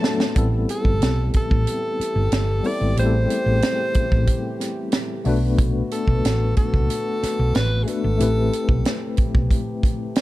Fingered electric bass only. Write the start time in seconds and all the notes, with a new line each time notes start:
0.36 A1
0.85 G1
1.02 B1
1.51 A1
1.99 muted fingered electric bass stroke
2.16 G1
2.32 G1
2.81 G#1
2.97 A1
3.46 A1
3.95 muted fingered electric bass stroke
4.12 A1
5.26 B1
6.07 B1
6.25 A1
6.74 C2
7.23 muted fingered electric bass stroke
7.39 B1
7.56 A1
8.04 G#1
8.21 A1
8.69 B1
9.18 muted fingered electric bass stroke
9.35 B1